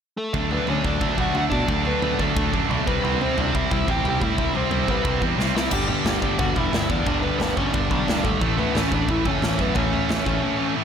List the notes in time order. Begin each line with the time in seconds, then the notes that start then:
0.17 A3 A4
0.34 D2 D3 F#3 A3 D4, kick, floor tom
0.51 D3 F#3 A3 B3 D4 B4, floor tom
0.67 D2 D3 F#3 A3 C#4 D4 C#5, floor tom
0.83 D2 D3 F#3 A3 D4 D5, kick, floor tom
1.01 D2 D3 F#3 A3 D4, kick, floor tom
1.17 B1 D3 F#3 A3 D4 F#4 F#5, kick, floor tom
1.34 D2 D3 F#3 A3 D4 F#4 F#5, floor tom
1.50 B2 D3 F#3 A3 D4 D5, kick, floor tom
1.68 D2 D3 F#3 A3 D4, kick, floor tom
1.85 D3 F#3 A3 B3 D4 B4, floor tom
2.02 D2 D3 F#3 A3 D4, floor tom
2.19 D2 D3 F#3 A3 D4 A4, kick, floor tom
2.36 D2 D3 F#3 A3 D4, kick, floor tom
2.53 F#2 D3 F#3 A3 D4, kick, floor tom
2.70 B1 D3 F#3 A3 D4, floor tom
2.85 C2 C3 G3 B3 C4 E4 B4, kick, floor tom
3.02 C2 C3 G3 C4 E4, floor tom
3.20 C3 G3 C4 E4 C5, floor tom
3.36 C2 C3 G3 C4 D4 E4, floor tom
3.40 D5
3.54 C2 C3 G3 C4 E4 E5, kick, floor tom
3.71 C2 C3 G3 C4 E4, kick, floor tom
3.87 A1 C3 G3 C4 E4 G4, kick, floor tom
3.91 G5
4.03 C2 C3 G3 C4 E4, floor tom
4.08 G4 G5
4.20 A2 C3 G3 C4 E4, kick, floor tom
4.24 E5
4.38 C2 C3 G3 C4 E4, kick, floor tom
4.55 C3 G3 C4 E4 C5, floor tom
4.71 C2 C3 G3 C4 E4, floor tom
4.88 C2 C3 G3 B3 C4 E4 B4, kick, floor tom
5.05 C2 C3 G3 C4 E4, kick, floor tom
5.21 E2 C3 G3 C4 E4, kick, floor tom
5.38 C2 C3 G3 C4 E4, snare
5.55 C2 C3 G3 C4 E4 E5, snare
5.71 G1 G2 D3 G3 B3 D4 G4 G5, kick, floor tom, crash
5.88 G2 D3 G3 B3 D4 G4 G5, floor tom
6.05 G1 G2 D3 G3 B3 D4, snare, floor tom
6.22 G1 G2 D3 G3 B3 D4, kick, floor tom
6.39 G1 G2 D3 G3 B3 D4 F#4 F#5, kick, floor tom
6.56 E1 G2 D3 G3 B3 D4 E4 E5, kick, floor tom
6.72 G1 G2 D3 G3 B3 D4, snare, floor tom
6.89 E2 G2 D3 G3 B3 D4 D5, kick, floor tom
7.06 G1 G2 D3 G3 B3 D4, kick, floor tom
7.22 G2 D3 G3 B3 D4 B4, floor tom
7.39 G1 G2 D3 G3 B3 D4 B4, snare, floor tom
7.56 G1 G2 D3 G3 B3 C#4 D4 C#5, kick, floor tom
7.73 G1 G2 D3 G3 B3 D4 D5, kick, floor tom
7.91 B1 G2 D3 G3 B3 D4, kick, floor tom
8.08 G1 G2 D3 G3 B3 D4, snare, floor tom
8.23 G#1 G2 D3 G3 A3 B3 D4 A4, kick, floor tom
8.41 A1 A2 E3 A3 C#4 E4, kick, floor tom
8.58 A2 E3 A3 B3 C#4 E4 B4, floor tom
8.75 A1 A2 E3 A3 C#4 E4 C#5, snare, floor tom
8.91 A1 A2 E3 A3 C#4 D4 E4 D5, kick, floor tom
9.08 A1 A2 E3 A3 C#4 E4 E5, kick, floor tom
9.25 F#1 A2 E3 A3 C#4 E4 C#5, kick, floor tom
9.42 A1 A2 E3 A3 C#4 E4, snare, floor tom
9.58 F#2 A2 E3 A3 B3 C#4 E4 B4, kick, floor tom
9.75 A1 A2 E3 A3 C#4 E4 C#5, kick, floor tom
9.93 A2 E3 A3 C#4 E4, floor tom
10.09 A1 A2 E3 A3 C#4 E4, snare, floor tom
10.26 A1 A2 E3 A3 C#4 E4, kick, floor tom
10.43 A2 E3 A3 C#4 E4
10.59 A2 E3 A3 C#4 E4
10.76 A2 E3 A3 C#4 E4